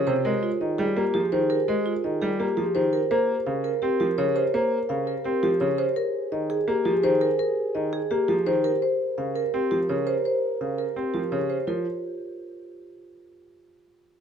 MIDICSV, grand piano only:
0, 0, Header, 1, 2, 480
1, 0, Start_track
1, 0, Tempo, 357143
1, 333, Time_signature, 4, 2, 24, 8
1, 19090, End_track
2, 0, Start_track
2, 0, Title_t, "Grand piano"
2, 0, Program_c, 0, 0
2, 0, Note_on_c, 0, 49, 77
2, 98, Note_on_c, 0, 48, 63
2, 166, Note_off_c, 0, 49, 0
2, 336, Note_on_c, 0, 56, 76
2, 407, Note_off_c, 0, 48, 0
2, 646, Note_off_c, 0, 56, 0
2, 818, Note_on_c, 0, 51, 61
2, 1061, Note_on_c, 0, 55, 77
2, 1127, Note_off_c, 0, 51, 0
2, 1298, Note_on_c, 0, 58, 67
2, 1368, Note_off_c, 0, 55, 0
2, 1541, Note_on_c, 0, 53, 57
2, 1607, Note_off_c, 0, 58, 0
2, 1779, Note_on_c, 0, 51, 75
2, 1848, Note_off_c, 0, 53, 0
2, 2087, Note_off_c, 0, 51, 0
2, 2260, Note_on_c, 0, 56, 78
2, 2568, Note_off_c, 0, 56, 0
2, 2744, Note_on_c, 0, 51, 58
2, 2985, Note_on_c, 0, 55, 72
2, 3049, Note_off_c, 0, 51, 0
2, 3219, Note_on_c, 0, 58, 62
2, 3289, Note_off_c, 0, 55, 0
2, 3457, Note_on_c, 0, 53, 55
2, 3527, Note_off_c, 0, 58, 0
2, 3699, Note_on_c, 0, 51, 77
2, 3767, Note_off_c, 0, 53, 0
2, 4008, Note_off_c, 0, 51, 0
2, 4180, Note_on_c, 0, 58, 76
2, 4488, Note_off_c, 0, 58, 0
2, 4659, Note_on_c, 0, 49, 62
2, 4967, Note_off_c, 0, 49, 0
2, 5140, Note_on_c, 0, 60, 69
2, 5382, Note_on_c, 0, 53, 59
2, 5448, Note_off_c, 0, 60, 0
2, 5620, Note_on_c, 0, 49, 70
2, 5688, Note_off_c, 0, 53, 0
2, 5928, Note_off_c, 0, 49, 0
2, 6103, Note_on_c, 0, 58, 77
2, 6409, Note_off_c, 0, 58, 0
2, 6582, Note_on_c, 0, 49, 57
2, 6888, Note_off_c, 0, 49, 0
2, 7061, Note_on_c, 0, 60, 64
2, 7300, Note_on_c, 0, 53, 60
2, 7368, Note_off_c, 0, 60, 0
2, 7538, Note_on_c, 0, 49, 69
2, 7608, Note_off_c, 0, 53, 0
2, 7847, Note_off_c, 0, 49, 0
2, 8493, Note_on_c, 0, 51, 61
2, 8805, Note_off_c, 0, 51, 0
2, 8973, Note_on_c, 0, 58, 70
2, 9213, Note_on_c, 0, 53, 62
2, 9285, Note_off_c, 0, 58, 0
2, 9456, Note_on_c, 0, 51, 78
2, 9525, Note_off_c, 0, 53, 0
2, 9766, Note_off_c, 0, 51, 0
2, 10419, Note_on_c, 0, 51, 62
2, 10727, Note_off_c, 0, 51, 0
2, 10898, Note_on_c, 0, 58, 61
2, 11137, Note_on_c, 0, 53, 61
2, 11207, Note_off_c, 0, 58, 0
2, 11377, Note_on_c, 0, 51, 75
2, 11446, Note_off_c, 0, 53, 0
2, 11687, Note_off_c, 0, 51, 0
2, 12335, Note_on_c, 0, 49, 50
2, 12646, Note_off_c, 0, 49, 0
2, 12819, Note_on_c, 0, 60, 62
2, 13057, Note_on_c, 0, 53, 51
2, 13127, Note_off_c, 0, 60, 0
2, 13298, Note_on_c, 0, 49, 67
2, 13367, Note_off_c, 0, 53, 0
2, 13607, Note_off_c, 0, 49, 0
2, 14257, Note_on_c, 0, 49, 48
2, 14567, Note_off_c, 0, 49, 0
2, 14735, Note_on_c, 0, 60, 55
2, 14976, Note_on_c, 0, 53, 48
2, 15046, Note_off_c, 0, 60, 0
2, 15213, Note_on_c, 0, 49, 63
2, 15286, Note_off_c, 0, 53, 0
2, 15525, Note_off_c, 0, 49, 0
2, 15691, Note_on_c, 0, 53, 54
2, 15915, Note_off_c, 0, 53, 0
2, 19090, End_track
0, 0, End_of_file